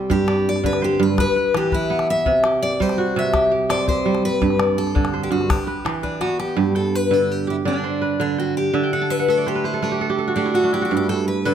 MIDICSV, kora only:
0, 0, Header, 1, 2, 480
1, 0, Start_track
1, 0, Key_signature, 1, "major"
1, 0, Tempo, 360360
1, 137, Time_signature, 12, 3, 24, 8
1, 15373, End_track
2, 0, Start_track
2, 0, Title_t, "Kora"
2, 0, Program_c, 0, 46
2, 0, Note_on_c, 0, 48, 74
2, 0, Note_on_c, 0, 55, 73
2, 0, Note_on_c, 0, 60, 77
2, 0, Note_on_c, 0, 67, 65
2, 130, Note_on_c, 0, 43, 75
2, 204, Note_off_c, 0, 48, 0
2, 204, Note_off_c, 0, 55, 0
2, 370, Note_on_c, 0, 74, 61
2, 847, Note_on_c, 0, 50, 71
2, 1090, Note_on_c, 0, 72, 66
2, 1291, Note_off_c, 0, 67, 0
2, 1310, Note_off_c, 0, 43, 0
2, 1326, Note_on_c, 0, 43, 81
2, 1569, Note_on_c, 0, 71, 65
2, 1641, Note_off_c, 0, 43, 0
2, 1641, Note_off_c, 0, 50, 0
2, 1649, Note_off_c, 0, 60, 0
2, 1809, Note_off_c, 0, 71, 0
2, 1814, Note_on_c, 0, 71, 64
2, 1846, Note_off_c, 0, 74, 0
2, 1894, Note_off_c, 0, 72, 0
2, 2054, Note_on_c, 0, 52, 65
2, 2290, Note_off_c, 0, 71, 0
2, 2295, Note_on_c, 0, 71, 68
2, 2532, Note_on_c, 0, 59, 73
2, 3011, Note_on_c, 0, 48, 81
2, 3077, Note_off_c, 0, 52, 0
2, 3091, Note_off_c, 0, 59, 0
2, 3091, Note_off_c, 0, 71, 0
2, 3260, Note_on_c, 0, 67, 65
2, 3731, Note_on_c, 0, 55, 81
2, 3968, Note_on_c, 0, 66, 61
2, 4048, Note_off_c, 0, 67, 0
2, 4197, Note_off_c, 0, 48, 0
2, 4213, Note_on_c, 0, 48, 83
2, 4446, Note_on_c, 0, 67, 68
2, 4677, Note_off_c, 0, 67, 0
2, 4682, Note_on_c, 0, 67, 63
2, 4762, Note_off_c, 0, 66, 0
2, 4921, Note_on_c, 0, 60, 76
2, 5155, Note_off_c, 0, 67, 0
2, 5161, Note_on_c, 0, 67, 68
2, 5385, Note_off_c, 0, 55, 0
2, 5401, Note_on_c, 0, 55, 71
2, 5883, Note_on_c, 0, 43, 82
2, 5949, Note_off_c, 0, 48, 0
2, 5949, Note_off_c, 0, 55, 0
2, 6117, Note_on_c, 0, 74, 61
2, 6593, Note_on_c, 0, 50, 71
2, 6840, Note_on_c, 0, 72, 61
2, 7042, Note_off_c, 0, 67, 0
2, 7051, Note_off_c, 0, 43, 0
2, 7067, Note_on_c, 0, 43, 70
2, 7315, Note_on_c, 0, 71, 57
2, 7386, Note_off_c, 0, 43, 0
2, 7386, Note_off_c, 0, 50, 0
2, 7395, Note_off_c, 0, 60, 0
2, 7549, Note_off_c, 0, 71, 0
2, 7554, Note_on_c, 0, 71, 62
2, 7592, Note_off_c, 0, 74, 0
2, 7634, Note_off_c, 0, 72, 0
2, 7790, Note_on_c, 0, 52, 69
2, 8026, Note_off_c, 0, 71, 0
2, 8032, Note_on_c, 0, 71, 58
2, 8273, Note_on_c, 0, 59, 74
2, 8745, Note_on_c, 0, 43, 84
2, 8824, Note_off_c, 0, 52, 0
2, 8990, Note_on_c, 0, 79, 57
2, 9462, Note_off_c, 0, 71, 0
2, 9467, Note_on_c, 0, 50, 67
2, 9468, Note_on_c, 0, 71, 56
2, 9953, Note_on_c, 0, 67, 62
2, 10180, Note_off_c, 0, 50, 0
2, 10195, Note_on_c, 0, 50, 73
2, 10195, Note_on_c, 0, 74, 60
2, 10231, Note_off_c, 0, 79, 0
2, 10438, Note_on_c, 0, 72, 59
2, 10518, Note_off_c, 0, 59, 0
2, 10518, Note_off_c, 0, 71, 0
2, 10677, Note_on_c, 0, 71, 59
2, 10903, Note_off_c, 0, 50, 0
2, 10919, Note_on_c, 0, 50, 77
2, 11165, Note_on_c, 0, 79, 57
2, 11621, Note_off_c, 0, 50, 0
2, 11636, Note_on_c, 0, 50, 79
2, 11641, Note_on_c, 0, 76, 62
2, 11671, Note_off_c, 0, 74, 0
2, 11707, Note_off_c, 0, 43, 0
2, 11763, Note_off_c, 0, 79, 0
2, 11768, Note_on_c, 0, 79, 63
2, 11834, Note_off_c, 0, 67, 0
2, 11892, Note_on_c, 0, 78, 63
2, 12008, Note_on_c, 0, 81, 66
2, 12020, Note_off_c, 0, 72, 0
2, 12121, Note_off_c, 0, 76, 0
2, 12127, Note_on_c, 0, 76, 75
2, 12240, Note_off_c, 0, 78, 0
2, 12246, Note_on_c, 0, 78, 66
2, 12314, Note_off_c, 0, 71, 0
2, 12326, Note_off_c, 0, 79, 0
2, 12363, Note_off_c, 0, 76, 0
2, 12365, Note_on_c, 0, 57, 72
2, 12369, Note_on_c, 0, 76, 60
2, 12486, Note_on_c, 0, 74, 66
2, 12607, Note_on_c, 0, 72, 67
2, 12727, Note_on_c, 0, 71, 64
2, 12838, Note_off_c, 0, 72, 0
2, 12843, Note_on_c, 0, 72, 74
2, 12969, Note_on_c, 0, 69, 65
2, 13081, Note_off_c, 0, 71, 0
2, 13082, Note_off_c, 0, 57, 0
2, 13086, Note_on_c, 0, 71, 60
2, 13087, Note_on_c, 0, 57, 71
2, 13166, Note_off_c, 0, 72, 0
2, 13166, Note_off_c, 0, 81, 0
2, 13207, Note_on_c, 0, 67, 65
2, 13287, Note_off_c, 0, 78, 0
2, 13328, Note_off_c, 0, 69, 0
2, 13333, Note_on_c, 0, 69, 66
2, 13444, Note_off_c, 0, 67, 0
2, 13449, Note_on_c, 0, 67, 68
2, 13561, Note_off_c, 0, 69, 0
2, 13566, Note_on_c, 0, 69, 59
2, 13688, Note_on_c, 0, 66, 67
2, 13746, Note_off_c, 0, 76, 0
2, 13767, Note_off_c, 0, 67, 0
2, 13802, Note_off_c, 0, 57, 0
2, 13803, Note_on_c, 0, 67, 65
2, 13807, Note_on_c, 0, 57, 75
2, 13924, Note_on_c, 0, 64, 60
2, 13962, Note_off_c, 0, 74, 0
2, 14035, Note_off_c, 0, 66, 0
2, 14040, Note_on_c, 0, 66, 66
2, 14120, Note_off_c, 0, 67, 0
2, 14167, Note_on_c, 0, 62, 65
2, 14282, Note_off_c, 0, 64, 0
2, 14287, Note_on_c, 0, 64, 69
2, 14402, Note_off_c, 0, 66, 0
2, 14407, Note_on_c, 0, 66, 60
2, 14533, Note_on_c, 0, 43, 80
2, 14601, Note_off_c, 0, 50, 0
2, 14724, Note_off_c, 0, 71, 0
2, 14771, Note_on_c, 0, 79, 62
2, 14851, Note_off_c, 0, 66, 0
2, 15257, Note_on_c, 0, 50, 72
2, 15258, Note_on_c, 0, 71, 68
2, 15321, Note_off_c, 0, 69, 0
2, 15373, Note_off_c, 0, 43, 0
2, 15373, Note_off_c, 0, 50, 0
2, 15373, Note_off_c, 0, 57, 0
2, 15373, Note_off_c, 0, 62, 0
2, 15373, Note_off_c, 0, 64, 0
2, 15373, Note_off_c, 0, 71, 0
2, 15373, Note_off_c, 0, 79, 0
2, 15373, End_track
0, 0, End_of_file